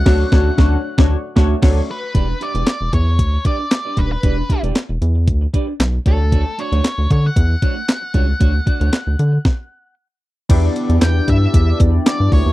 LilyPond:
<<
  \new Staff \with { instrumentName = "Lead electric guitar" } { \time 4/4 \key e \dorian \tempo 4 = 115 fis''2. r8 b'8~ | b'8 d''8 d''8 cis''4 d''4 b'16 b'16~ | b'8. r2 r8. a'8~ | a'8 cis''4 cis''16 fis''2~ fis''16~ |
fis''2. r4 | r4 g''8 e''4 r8 d''8 cis''8 | }
  \new Staff \with { instrumentName = "Clean electric guitar" } { \time 4/4 \key e \dorian <cis' fis' a' cis''>8 <cis' fis' a'>8 <cis' fis' a'>8 r16 <cis' fis' a' cis''>8 r16 <cis' fis' a' cis''>8 <cis' fis' a' cis''>8 r8 | <d' g' b' d''>16 r16 <d' g' b' e''>16 <d' g' b' d''>16 r4. <d' g' b' d''>16 r8 <d' g' b' d''>16 <d' g' b' d''>16 r16 | <d' g' b' d''>16 r16 <d' g' b' e''>16 <d' g' b' d''>16 r4. <d' g' b' d''>16 r8. <a d' fis' cis''>16 r16 | <a d' fis' cis''>16 r16 <a d' fis' d''>16 <a d' fis' cis''>16 r4. <a d' fis' cis''>16 r8. <a d' fis' cis''>16 r16 |
<a d' fis' cis''>16 r16 <a d' fis' d''>16 <a d' fis' cis''>16 r2. | r1 | }
  \new Staff \with { instrumentName = "Analog polysynth" } { \time 4/4 \key e \dorian <a d' fis' cis''>8 <a d' fis' cis''>8 <a d' fis' cis''>8 r16 <a d' fis' cis''>8 r16 <a d' fis' cis''>8 <a d' fis' cis''>8 r8 | r1 | r1 | r1 |
r1 | <b d' e' g' d''>1 | }
  \new Staff \with { instrumentName = "Analog synth bass" } { \clef bass \time 4/4 \key e \dorian d,8 d,8 d,8 r16 d,8 r16 d,8 d,8 r8 | e,,8 r16 e,,16 r16 e,,16 e,8 d,8 r4 dis,,8 | e,,8 r16 e,,16 r16 e,,16 e,8 d,8 r8 b,,8 d,8~ | d,8 r16 d,16 r16 d,16 d8 e,8 r4 cis,8 |
d,8 r16 d,16 r16 d,16 d8 r2 | e,8 r16 e,16 e,8 g,8 e,8 e,8 r16 g,16 d,16 dis,16 | }
  \new DrumStaff \with { instrumentName = "Drums" } \drummode { \time 4/4 <cymc bd sn>8 <bd sn>8 <bd sn>8. <bd sn>16 r8 <bd sn>8 <cymc bd sn>4 | <hh bd>8 hh16 hh16 <hc hh sn>8 <hh bd>8 <hh bd>8 <hh bd>8 <hc hh sn>8 <hh bd>8 | <hh bd>8 <hh bd>16 hh16 <hc hh sn>8 hh8 <hh bd>8 <hh bd>8 <hc hh sn>8 <hh bd>8 | <hh bd>8 hh16 hh16 <hc hh sn>8 <hh bd>8 <hh bd>8 <hh bd>8 <hc hh sn>8 <hh bd>8 |
<hh bd>8 <hh bd>16 hh16 <hc hh sn>8 hh8 <bd sn>4 r4 | <cymc hh bd>8 hh16 hh16 <hc hh sn>8 <hh bd>8 <hh bd>8 <hh bd>8 <hc hh sn>8 <hho bd>8 | }
>>